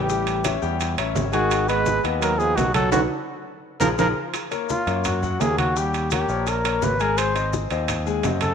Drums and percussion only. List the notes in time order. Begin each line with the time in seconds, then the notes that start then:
0.09 high bongo, maracas
0.27 high bongo, high conga, high timbale, maracas
0.44 high bongo, high conga, high timbale, low timbale, maracas
0.62 high bongo, high conga, maracas
0.80 high bongo, high conga, high timbale, maracas
0.97 high bongo, high conga, high timbale, maracas
1.15 high bongo, low bongo, high conga, low timbale, maracas
1.33 high conga, high timbale, maracas
1.51 high bongo, high conga, high timbale, maracas
1.68 high bongo, high conga, high timbale, maracas
1.86 high bongo, high conga, low timbale, maracas
2.04 high bongo, high conga, high timbale, maracas
2.22 high bongo, high conga, high timbale, maracas
2.40 high bongo, high conga, maracas
2.58 high bongo, low bongo, high conga, high timbale, low timbale, maracas
2.74 high conga, high timbale, maracas
2.92 low bongo, high conga, high timbale, maracas
3.81 low bongo, high conga, high timbale, maracas
3.98 low bongo, high conga, high timbale, maracas
4.34 high bongo, high conga, high timbale, maracas
4.52 high bongo, high conga, high timbale, maracas
4.69 high bongo, high conga, low timbale, maracas
4.87 high bongo, high conga, high timbale, maracas
5.04 high bongo, high conga, low conga, high timbale, maracas
5.23 high bongo, high conga, low conga, maracas
5.41 high bongo, low bongo, high conga, high timbale, low timbale, maracas
5.58 high conga, high timbale, maracas
5.76 high bongo, maracas
5.94 high bongo, high conga, high timbale, maracas
6.10 high bongo, high conga, high timbale, low timbale, maracas
6.29 high bongo, high conga, maracas
6.47 high bongo, high conga, high timbale, maracas
6.65 high bongo, high conga, high timbale, maracas
6.82 high bongo, low bongo, high conga, low timbale, maracas
7.00 high conga, high timbale, maracas
7.18 high bongo, high conga, high timbale, maracas
7.35 high bongo, high conga, high timbale, maracas
7.53 high bongo, high conga, low timbale, maracas
7.71 high bongo, high conga, high timbale, maracas
7.88 high bongo, high conga, low conga, high timbale, maracas
8.07 high bongo, high conga, maracas
8.23 high bongo, low bongo, high conga, high timbale, low timbale, maracas
8.41 high conga, high timbale, maracas